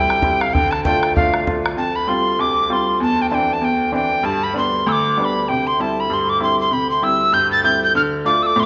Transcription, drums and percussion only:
0.10 bodhran medium
0.22 bodhran medium
0.41 bodhran medium
0.55 bodhran medium
0.65 bodhran soft
0.72 bodhran medium
0.85 bodhran medium
1.03 bodhran medium
1.17 bodhran medium
1.34 bodhran medium
1.47 bodhran medium
1.66 bodhran medium

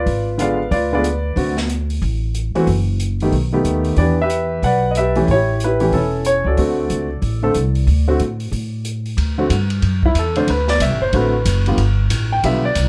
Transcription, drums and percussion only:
0.06 kick soft
0.06 open hi-hat soft
0.39 closed hi-hat soft
0.71 kick soft
0.71 open hi-hat soft
1.04 closed hi-hat soft
1.36 kick soft
1.36 open hi-hat soft
1.57 snare soft
1.70 closed hi-hat medium
1.90 open hi-hat soft
2.02 kick soft
2.02 open hi-hat soft
2.35 closed hi-hat soft
2.55 open hi-hat soft
2.67 kick soft
2.67 open hi-hat soft
3.00 closed hi-hat medium
3.20 open hi-hat soft
3.32 kick soft
3.32 open hi-hat soft
3.65 closed hi-hat soft
3.84 open hi-hat soft
3.96 kick soft
3.96 open hi-hat soft
4.30 closed hi-hat medium
4.63 kick soft
4.63 open hi-hat soft
4.95 closed hi-hat soft
5.15 open hi-hat soft
5.28 kick soft
5.28 open hi-hat soft
5.60 closed hi-hat soft
5.80 open hi-hat soft
5.92 kick soft
5.92 open hi-hat soft
6.25 closed hi-hat soft
6.57 kick soft
6.57 open hi-hat soft
6.90 closed hi-hat medium
7.22 kick soft
7.22 open hi-hat soft
7.54 closed hi-hat soft
7.75 open hi-hat soft
7.87 kick soft
7.87 open hi-hat soft
8.20 closed hi-hat medium
8.40 open hi-hat soft
8.52 kick soft
8.52 open hi-hat soft
8.85 closed hi-hat soft
9.06 open hi-hat soft
9.17 kick soft
9.17 ride medium
9.50 kick soft
9.50 hi-hat pedal medium
9.50 ride medium
9.70 ride soft
9.82 kick soft
9.82 ride soft
10.03 kick soft
10.15 kick soft
10.15 hi-hat pedal soft
10.15 ride medium
10.35 ride soft
10.48 kick soft
10.48 ride medium
10.68 snare soft
10.80 kick soft
10.80 hi-hat pedal medium
10.80 ride medium
11.13 kick soft
11.13 ride soft
11.45 kick soft
11.45 hi-hat pedal medium
11.45 ride medium
11.66 ride soft
11.78 kick soft
11.78 ride soft
12.10 kick soft
12.10 hi-hat pedal medium
12.10 ride medium
12.43 kick soft
12.43 ride medium
12.75 kick soft
12.75 hi-hat pedal medium
12.75 ride medium

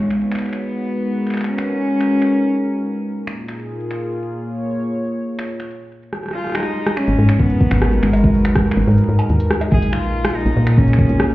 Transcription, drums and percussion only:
0.10 finger snap soft
0.32 finger snap soft
0.35 finger snap soft
0.39 finger snap soft
0.42 finger snap soft
0.46 finger snap soft
0.49 finger snap soft
0.53 finger snap soft
1.27 finger snap soft
1.30 finger snap soft
1.34 finger snap soft
1.37 finger snap soft
1.41 finger snap soft
1.44 finger snap medium
1.58 finger snap medium
2.01 finger snap soft
2.22 finger snap soft
3.27 finger snap medium
3.48 finger snap soft
3.91 finger snap soft
5.39 finger snap soft
5.60 finger snap soft
6.13 cross-stick medium
6.23 cross-stick soft
6.26 cross-stick soft
6.28 cross-stick soft
6.31 cross-stick soft
6.44 cross-stick soft
6.47 cross-stick soft
6.50 cross-stick soft
6.52 finger snap medium
6.52 cross-stick soft
6.55 cross-stick medium
6.57 cross-stick medium
6.60 cross-stick medium
6.63 cross-stick medium
6.63 closed hi-hat soft
6.86 cross-stick loud
6.86 closed hi-hat medium
6.97 finger snap medium
7.08 closed hi-hat medium
7.29 finger snap medium
7.29 closed hi-hat medium
7.39 kick loud
7.50 closed hi-hat medium
7.61 kick loud
7.71 finger snap medium
7.82 cross-stick loud
7.92 closed hi-hat soft
8.03 finger snap medium
8.13 closed hi-hat medium
8.13 cowbell medium
8.17 closed hi-hat soft
8.20 kick loud
8.20 closed hi-hat soft
8.34 closed hi-hat soft
8.37 closed hi-hat soft
8.40 closed hi-hat soft
8.42 finger snap medium
8.42 closed hi-hat soft
8.55 kick loud
8.55 cross-stick loud
8.55 closed hi-hat medium
8.71 finger snap medium
8.77 closed hi-hat soft
8.80 closed hi-hat soft
8.84 closed hi-hat soft
8.87 closed hi-hat soft
8.91 closed hi-hat soft
8.94 closed hi-hat soft
8.98 closed hi-hat medium
9.19 cowbell medium
9.29 closed hi-hat medium
9.40 closed hi-hat medium
9.51 cross-stick loud
9.61 closed hi-hat soft
9.61 cowbell medium
9.72 kick loud
9.82 closed hi-hat medium
9.93 finger snap medium
10.04 closed hi-hat soft
10.25 finger snap medium
10.25 cross-stick loud
10.25 closed hi-hat medium
10.30 closed hi-hat medium
10.35 closed hi-hat soft
10.40 closed hi-hat soft
10.46 closed hi-hat medium
10.49 closed hi-hat soft
10.53 closed hi-hat soft
10.56 closed hi-hat soft
10.60 closed hi-hat soft
10.63 finger snap medium
10.63 closed hi-hat soft
10.67 closed hi-hat medium
10.78 kick loud
10.88 closed hi-hat medium
10.93 finger snap medium
10.99 kick loud
11.09 closed hi-hat medium
11.20 cross-stick loud
11.30 closed hi-hat soft

